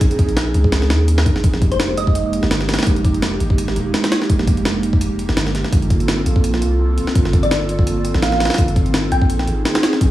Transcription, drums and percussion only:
0.01 kick, closed hi-hat
0.11 closed hi-hat
0.19 kick, closed hi-hat
0.29 closed hi-hat
0.37 snare, closed hi-hat
0.54 closed hi-hat
0.64 kick
0.72 snare, closed hi-hat
0.82 snare
0.90 snare, closed hi-hat
1.08 closed hi-hat
1.18 snare
1.26 kick, closed hi-hat
1.36 snare
1.44 kick, closed hi-hat
1.54 snare
1.62 kick, closed hi-hat
1.72 closed hi-hat
1.80 snare, closed hi-hat
1.97 closed hi-hat
2.07 kick
2.15 closed hi-hat
2.33 closed hi-hat
2.43 snare
2.51 snare, closed hi-hat
2.61 snare
2.69 snare, closed hi-hat
2.74 snare, closed hi-hat
2.79 snare, closed hi-hat
2.83 snare, closed hi-hat
2.87 kick, closed hi-hat
2.96 closed hi-hat
3.05 kick, closed hi-hat
3.14 closed hi-hat
3.22 snare, closed hi-hat
3.40 closed hi-hat
3.50 kick
3.58 closed hi-hat
3.68 snare
3.76 closed hi-hat
3.94 snare, closed hi-hat
4.04 snare, closed hi-hat
4.12 snare, closed hi-hat
4.22 snare
4.30 kick, closed hi-hat
4.39 snare
4.47 kick, closed hi-hat
4.57 closed hi-hat
4.65 snare, closed hi-hat
4.83 closed hi-hat
4.93 kick
5.01 closed hi-hat
5.19 closed hi-hat
5.29 snare
5.37 snare, closed hi-hat
5.47 snare
5.55 snare, closed hi-hat
5.64 snare
5.73 kick, closed hi-hat
5.82 closed hi-hat
5.90 kick, closed hi-hat
6.00 closed hi-hat
6.08 snare, closed hi-hat
6.26 closed hi-hat
6.36 kick
6.44 closed hi-hat
6.54 snare
6.62 closed hi-hat
6.98 closed hi-hat
7.07 snare
7.15 kick, closed hi-hat
7.25 snare
7.33 kick, closed hi-hat
7.43 closed hi-hat
7.51 snare, closed hi-hat
7.69 closed hi-hat
7.79 kick
7.87 closed hi-hat
8.05 closed hi-hat
8.14 snare
8.22 snare, closed hi-hat
8.32 snare
8.40 snare, closed hi-hat
8.45 snare, closed hi-hat
8.50 snare, closed hi-hat
8.54 snare, closed hi-hat
8.58 kick, closed hi-hat
8.68 closed hi-hat
8.76 kick, closed hi-hat
8.86 closed hi-hat
8.94 snare, closed hi-hat
9.12 closed hi-hat
9.22 kick
9.30 closed hi-hat
9.39 snare
9.47 closed hi-hat
9.65 snare, closed hi-hat
9.75 snare, closed hi-hat
9.83 snare, closed hi-hat
9.93 snare
10.01 kick, closed hi-hat

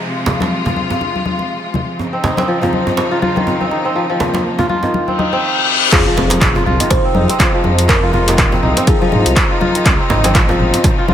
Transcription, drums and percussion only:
0.26 djembe slap, muted conga, djembe tone, low conga
0.40 djembe slap, high conga
0.65 muted conga, djembe tone, low conga
0.76 high conga
0.90 djembe tone
1.01 muted conga, high conga
1.16 high conga
1.26 high conga
1.39 muted conga
1.74 muted conga, high conga, low conga
1.99 djembe tone
2.24 djembe slap, muted conga, djembe tone, low conga
2.37 djembe slap, high conga
2.62 muted conga, djembe tone, low conga
2.73 high conga
2.87 djembe tone
2.97 djembe slap, muted conga
3.22 high conga
3.36 muted conga, high conga
3.47 djembe tone
3.61 high conga
3.71 muted conga
4.20 djembe slap, muted conga, djembe tone, low conga
4.34 djembe slap, high conga
4.59 muted conga, djembe tone, low conga
4.69 high conga
4.83 djembe tone
4.94 muted conga, high conga
5.08 high conga
5.19 high conga
5.32 muted conga
5.92 kick, clap, closed hi-hat, crash, djembe tone
6.17 muted conga, djembe slap, djembe tone, low conga
6.30 closed hi-hat, djembe slap, high conga
6.41 kick, clap, closed hi-hat, mid tom
6.55 muted conga, djembe tone, low conga
6.66 mid tom, high conga
6.80 closed hi-hat, djembe tone
6.90 kick, closed hi-hat, mid tom, djembe slap, muted conga
7.15 high conga
7.30 closed hi-hat, muted conga
7.39 kick, clap, closed hi-hat, djembe tone
7.64 muted conga, high conga
7.79 closed hi-hat
7.89 kick, clap, closed hi-hat
8.13 muted conga, djembe tone, low conga
8.28 closed hi-hat, djembe slap
8.38 kick, clap, closed hi-hat, mid tom
8.52 muted conga, djembe tone, low conga
8.63 mid tom, high conga
8.77 closed hi-hat, djembe tone
8.87 kick, closed hi-hat, muted conga
9.02 high conga
9.12 mid tom, high conga
9.26 closed hi-hat, muted conga
9.36 kick, clap, closed hi-hat
9.61 muted conga, high conga, low conga
9.75 closed hi-hat
9.86 kick, clap, closed hi-hat, djembe tone
10.10 djembe slap, muted conga, djembe tone, low conga
10.24 closed hi-hat, djembe slap, high conga
10.35 kick, clap, closed hi-hat, mid tom
10.49 muted conga, djembe tone, low conga
10.60 mid tom, high conga
10.74 closed hi-hat, djembe tone
10.84 kick, closed hi-hat, mid tom, djembe slap, muted conga
11.08 high conga

